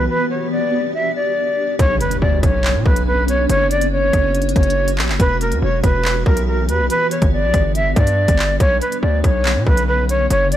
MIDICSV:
0, 0, Header, 1, 7, 480
1, 0, Start_track
1, 0, Key_signature, 2, "minor"
1, 0, Tempo, 425532
1, 103, Time_signature, 4, 2, 24, 8
1, 11921, End_track
2, 0, Start_track
2, 0, Title_t, "Flute"
2, 0, Program_c, 0, 73
2, 103, Note_on_c, 0, 71, 105
2, 325, Note_off_c, 0, 71, 0
2, 340, Note_on_c, 0, 73, 73
2, 563, Note_off_c, 0, 73, 0
2, 581, Note_on_c, 0, 74, 88
2, 1033, Note_off_c, 0, 74, 0
2, 1063, Note_on_c, 0, 76, 90
2, 1285, Note_off_c, 0, 76, 0
2, 1301, Note_on_c, 0, 74, 85
2, 1979, Note_off_c, 0, 74, 0
2, 2025, Note_on_c, 0, 73, 123
2, 2246, Note_off_c, 0, 73, 0
2, 2258, Note_on_c, 0, 71, 87
2, 2482, Note_off_c, 0, 71, 0
2, 2496, Note_on_c, 0, 74, 78
2, 2721, Note_off_c, 0, 74, 0
2, 2744, Note_on_c, 0, 73, 84
2, 3195, Note_off_c, 0, 73, 0
2, 3221, Note_on_c, 0, 71, 85
2, 3444, Note_off_c, 0, 71, 0
2, 3461, Note_on_c, 0, 71, 89
2, 3684, Note_off_c, 0, 71, 0
2, 3703, Note_on_c, 0, 73, 88
2, 3925, Note_off_c, 0, 73, 0
2, 3942, Note_on_c, 0, 73, 109
2, 4165, Note_off_c, 0, 73, 0
2, 4186, Note_on_c, 0, 74, 92
2, 4406, Note_off_c, 0, 74, 0
2, 4424, Note_on_c, 0, 73, 96
2, 5100, Note_off_c, 0, 73, 0
2, 5141, Note_on_c, 0, 73, 81
2, 5537, Note_off_c, 0, 73, 0
2, 5862, Note_on_c, 0, 71, 111
2, 6084, Note_off_c, 0, 71, 0
2, 6105, Note_on_c, 0, 70, 80
2, 6326, Note_off_c, 0, 70, 0
2, 6347, Note_on_c, 0, 73, 97
2, 6567, Note_off_c, 0, 73, 0
2, 6581, Note_on_c, 0, 71, 89
2, 7033, Note_off_c, 0, 71, 0
2, 7062, Note_on_c, 0, 70, 83
2, 7284, Note_off_c, 0, 70, 0
2, 7305, Note_on_c, 0, 70, 76
2, 7526, Note_off_c, 0, 70, 0
2, 7540, Note_on_c, 0, 71, 80
2, 7763, Note_off_c, 0, 71, 0
2, 7783, Note_on_c, 0, 71, 103
2, 8005, Note_off_c, 0, 71, 0
2, 8020, Note_on_c, 0, 73, 74
2, 8243, Note_off_c, 0, 73, 0
2, 8262, Note_on_c, 0, 74, 92
2, 8714, Note_off_c, 0, 74, 0
2, 8747, Note_on_c, 0, 76, 93
2, 8967, Note_off_c, 0, 76, 0
2, 8983, Note_on_c, 0, 74, 84
2, 9660, Note_off_c, 0, 74, 0
2, 9705, Note_on_c, 0, 73, 122
2, 9926, Note_off_c, 0, 73, 0
2, 9940, Note_on_c, 0, 71, 85
2, 10164, Note_off_c, 0, 71, 0
2, 10176, Note_on_c, 0, 74, 77
2, 10401, Note_off_c, 0, 74, 0
2, 10424, Note_on_c, 0, 73, 83
2, 10874, Note_off_c, 0, 73, 0
2, 10901, Note_on_c, 0, 71, 86
2, 11124, Note_off_c, 0, 71, 0
2, 11142, Note_on_c, 0, 71, 93
2, 11364, Note_off_c, 0, 71, 0
2, 11383, Note_on_c, 0, 73, 85
2, 11605, Note_off_c, 0, 73, 0
2, 11624, Note_on_c, 0, 73, 104
2, 11845, Note_off_c, 0, 73, 0
2, 11867, Note_on_c, 0, 74, 94
2, 11921, Note_off_c, 0, 74, 0
2, 11921, End_track
3, 0, Start_track
3, 0, Title_t, "Ambient pad"
3, 0, Program_c, 1, 92
3, 0, Note_on_c, 1, 59, 73
3, 104, Note_on_c, 1, 62, 73
3, 104, Note_on_c, 1, 67, 88
3, 1984, Note_off_c, 1, 59, 0
3, 2004, Note_off_c, 1, 62, 0
3, 2004, Note_off_c, 1, 67, 0
3, 2023, Note_on_c, 1, 59, 80
3, 2023, Note_on_c, 1, 61, 77
3, 2023, Note_on_c, 1, 62, 88
3, 3923, Note_off_c, 1, 62, 0
3, 3924, Note_off_c, 1, 59, 0
3, 3944, Note_on_c, 1, 58, 84
3, 3944, Note_on_c, 1, 66, 91
3, 5825, Note_off_c, 1, 61, 0
3, 5844, Note_off_c, 1, 58, 0
3, 5863, Note_on_c, 1, 52, 82
3, 5863, Note_on_c, 1, 59, 74
3, 5863, Note_on_c, 1, 67, 88
3, 7745, Note_off_c, 1, 66, 0
3, 7764, Note_off_c, 1, 52, 0
3, 7764, Note_off_c, 1, 67, 0
3, 7783, Note_on_c, 1, 55, 83
3, 7784, Note_on_c, 1, 62, 92
3, 9684, Note_off_c, 1, 55, 0
3, 9684, Note_off_c, 1, 62, 0
3, 9702, Note_on_c, 1, 50, 81
3, 9703, Note_on_c, 1, 61, 91
3, 11578, Note_off_c, 1, 59, 0
3, 11603, Note_off_c, 1, 50, 0
3, 11623, Note_on_c, 1, 58, 77
3, 11624, Note_on_c, 1, 54, 82
3, 11921, Note_off_c, 1, 54, 0
3, 11921, Note_off_c, 1, 58, 0
3, 11921, Note_off_c, 1, 61, 0
3, 11921, End_track
4, 0, Start_track
4, 0, Title_t, "808-style bass"
4, 0, Program_c, 2, 38
4, 2023, Note_on_c, 2, 35, 112
4, 2253, Note_off_c, 2, 35, 0
4, 2503, Note_on_c, 2, 38, 104
4, 2733, Note_off_c, 2, 38, 0
4, 2742, Note_on_c, 2, 35, 108
4, 3103, Note_on_c, 2, 47, 95
4, 3120, Note_off_c, 2, 35, 0
4, 3217, Note_off_c, 2, 47, 0
4, 3222, Note_on_c, 2, 35, 107
4, 3913, Note_off_c, 2, 35, 0
4, 3942, Note_on_c, 2, 30, 113
4, 4633, Note_off_c, 2, 30, 0
4, 4662, Note_on_c, 2, 30, 106
4, 5123, Note_off_c, 2, 30, 0
4, 5142, Note_on_c, 2, 30, 111
4, 5623, Note_on_c, 2, 34, 100
4, 5640, Note_off_c, 2, 30, 0
4, 5742, Note_on_c, 2, 30, 100
4, 5759, Note_off_c, 2, 34, 0
4, 5856, Note_off_c, 2, 30, 0
4, 5862, Note_on_c, 2, 28, 107
4, 6222, Note_on_c, 2, 40, 103
4, 6239, Note_off_c, 2, 28, 0
4, 6337, Note_off_c, 2, 40, 0
4, 6343, Note_on_c, 2, 28, 106
4, 6573, Note_off_c, 2, 28, 0
4, 6583, Note_on_c, 2, 28, 106
4, 7043, Note_off_c, 2, 28, 0
4, 7062, Note_on_c, 2, 35, 109
4, 7543, Note_on_c, 2, 40, 99
4, 7560, Note_off_c, 2, 35, 0
4, 7663, Note_on_c, 2, 35, 99
4, 7680, Note_off_c, 2, 40, 0
4, 7777, Note_off_c, 2, 35, 0
4, 8142, Note_on_c, 2, 31, 104
4, 8383, Note_on_c, 2, 34, 100
4, 8400, Note_off_c, 2, 31, 0
4, 8497, Note_off_c, 2, 34, 0
4, 8503, Note_on_c, 2, 31, 102
4, 8964, Note_off_c, 2, 31, 0
4, 8982, Note_on_c, 2, 43, 105
4, 9328, Note_off_c, 2, 43, 0
4, 9344, Note_on_c, 2, 31, 103
4, 9689, Note_off_c, 2, 31, 0
4, 9703, Note_on_c, 2, 35, 108
4, 9933, Note_off_c, 2, 35, 0
4, 10182, Note_on_c, 2, 38, 108
4, 10413, Note_off_c, 2, 38, 0
4, 10423, Note_on_c, 2, 35, 105
4, 10783, Note_on_c, 2, 47, 99
4, 10800, Note_off_c, 2, 35, 0
4, 10897, Note_off_c, 2, 47, 0
4, 10903, Note_on_c, 2, 35, 106
4, 11594, Note_off_c, 2, 35, 0
4, 11624, Note_on_c, 2, 30, 115
4, 11921, Note_off_c, 2, 30, 0
4, 11921, End_track
5, 0, Start_track
5, 0, Title_t, "Impact"
5, 0, Program_c, 3, 103
5, 2023, Note_on_c, 3, 60, 86
5, 3943, Note_off_c, 3, 60, 0
5, 11921, End_track
6, 0, Start_track
6, 0, Title_t, "Swell"
6, 0, Program_c, 4, 103
6, 0, Note_on_c, 4, 60, 88
6, 1062, Note_off_c, 4, 60, 0
6, 11921, End_track
7, 0, Start_track
7, 0, Title_t, "Drums"
7, 2023, Note_on_c, 9, 36, 119
7, 2023, Note_on_c, 9, 42, 87
7, 2135, Note_off_c, 9, 36, 0
7, 2136, Note_off_c, 9, 42, 0
7, 2263, Note_on_c, 9, 42, 79
7, 2375, Note_off_c, 9, 42, 0
7, 2382, Note_on_c, 9, 42, 69
7, 2495, Note_off_c, 9, 42, 0
7, 2742, Note_on_c, 9, 36, 98
7, 2742, Note_on_c, 9, 37, 92
7, 2742, Note_on_c, 9, 42, 86
7, 2855, Note_off_c, 9, 36, 0
7, 2855, Note_off_c, 9, 37, 0
7, 2855, Note_off_c, 9, 42, 0
7, 2983, Note_on_c, 9, 39, 114
7, 3096, Note_off_c, 9, 39, 0
7, 3222, Note_on_c, 9, 36, 107
7, 3335, Note_off_c, 9, 36, 0
7, 3342, Note_on_c, 9, 42, 84
7, 3455, Note_off_c, 9, 42, 0
7, 3703, Note_on_c, 9, 42, 74
7, 3815, Note_off_c, 9, 42, 0
7, 3942, Note_on_c, 9, 42, 89
7, 4055, Note_off_c, 9, 42, 0
7, 4182, Note_on_c, 9, 42, 78
7, 4295, Note_off_c, 9, 42, 0
7, 4302, Note_on_c, 9, 42, 71
7, 4415, Note_off_c, 9, 42, 0
7, 4662, Note_on_c, 9, 36, 94
7, 4662, Note_on_c, 9, 37, 93
7, 4663, Note_on_c, 9, 42, 85
7, 4775, Note_off_c, 9, 36, 0
7, 4775, Note_off_c, 9, 37, 0
7, 4775, Note_off_c, 9, 42, 0
7, 4902, Note_on_c, 9, 42, 61
7, 4982, Note_off_c, 9, 42, 0
7, 4982, Note_on_c, 9, 42, 60
7, 5063, Note_off_c, 9, 42, 0
7, 5063, Note_on_c, 9, 42, 62
7, 5142, Note_off_c, 9, 42, 0
7, 5142, Note_on_c, 9, 36, 100
7, 5142, Note_on_c, 9, 42, 59
7, 5222, Note_off_c, 9, 42, 0
7, 5222, Note_on_c, 9, 42, 60
7, 5255, Note_off_c, 9, 36, 0
7, 5302, Note_off_c, 9, 42, 0
7, 5302, Note_on_c, 9, 42, 61
7, 5415, Note_off_c, 9, 42, 0
7, 5502, Note_on_c, 9, 42, 88
7, 5615, Note_off_c, 9, 42, 0
7, 5622, Note_on_c, 9, 39, 121
7, 5735, Note_off_c, 9, 39, 0
7, 5743, Note_on_c, 9, 39, 75
7, 5855, Note_off_c, 9, 39, 0
7, 5862, Note_on_c, 9, 42, 88
7, 5863, Note_on_c, 9, 36, 118
7, 5975, Note_off_c, 9, 36, 0
7, 5975, Note_off_c, 9, 42, 0
7, 6102, Note_on_c, 9, 42, 78
7, 6215, Note_off_c, 9, 42, 0
7, 6223, Note_on_c, 9, 42, 70
7, 6336, Note_off_c, 9, 42, 0
7, 6582, Note_on_c, 9, 37, 93
7, 6583, Note_on_c, 9, 36, 94
7, 6583, Note_on_c, 9, 42, 85
7, 6695, Note_off_c, 9, 36, 0
7, 6695, Note_off_c, 9, 37, 0
7, 6695, Note_off_c, 9, 42, 0
7, 6823, Note_on_c, 9, 39, 112
7, 6936, Note_off_c, 9, 39, 0
7, 7062, Note_on_c, 9, 36, 103
7, 7175, Note_off_c, 9, 36, 0
7, 7183, Note_on_c, 9, 42, 81
7, 7295, Note_off_c, 9, 42, 0
7, 7543, Note_on_c, 9, 42, 80
7, 7656, Note_off_c, 9, 42, 0
7, 7783, Note_on_c, 9, 42, 89
7, 7896, Note_off_c, 9, 42, 0
7, 8023, Note_on_c, 9, 42, 79
7, 8136, Note_off_c, 9, 42, 0
7, 8142, Note_on_c, 9, 42, 70
7, 8143, Note_on_c, 9, 36, 97
7, 8255, Note_off_c, 9, 36, 0
7, 8255, Note_off_c, 9, 42, 0
7, 8502, Note_on_c, 9, 37, 94
7, 8503, Note_on_c, 9, 36, 94
7, 8503, Note_on_c, 9, 42, 88
7, 8615, Note_off_c, 9, 36, 0
7, 8615, Note_off_c, 9, 37, 0
7, 8615, Note_off_c, 9, 42, 0
7, 8742, Note_on_c, 9, 42, 74
7, 8855, Note_off_c, 9, 42, 0
7, 8982, Note_on_c, 9, 36, 104
7, 8983, Note_on_c, 9, 42, 80
7, 9095, Note_off_c, 9, 36, 0
7, 9096, Note_off_c, 9, 42, 0
7, 9102, Note_on_c, 9, 42, 85
7, 9215, Note_off_c, 9, 42, 0
7, 9343, Note_on_c, 9, 36, 91
7, 9343, Note_on_c, 9, 42, 90
7, 9455, Note_off_c, 9, 42, 0
7, 9456, Note_off_c, 9, 36, 0
7, 9463, Note_on_c, 9, 39, 120
7, 9576, Note_off_c, 9, 39, 0
7, 9702, Note_on_c, 9, 42, 87
7, 9703, Note_on_c, 9, 36, 124
7, 9815, Note_off_c, 9, 42, 0
7, 9816, Note_off_c, 9, 36, 0
7, 9943, Note_on_c, 9, 42, 76
7, 10056, Note_off_c, 9, 42, 0
7, 10064, Note_on_c, 9, 42, 71
7, 10176, Note_off_c, 9, 42, 0
7, 10423, Note_on_c, 9, 36, 98
7, 10423, Note_on_c, 9, 37, 95
7, 10424, Note_on_c, 9, 42, 85
7, 10536, Note_off_c, 9, 36, 0
7, 10536, Note_off_c, 9, 37, 0
7, 10536, Note_off_c, 9, 42, 0
7, 10665, Note_on_c, 9, 39, 110
7, 10777, Note_off_c, 9, 39, 0
7, 10903, Note_on_c, 9, 36, 101
7, 11016, Note_off_c, 9, 36, 0
7, 11024, Note_on_c, 9, 42, 84
7, 11137, Note_off_c, 9, 42, 0
7, 11384, Note_on_c, 9, 42, 75
7, 11497, Note_off_c, 9, 42, 0
7, 11624, Note_on_c, 9, 42, 89
7, 11736, Note_off_c, 9, 42, 0
7, 11864, Note_on_c, 9, 42, 79
7, 11921, Note_off_c, 9, 42, 0
7, 11921, End_track
0, 0, End_of_file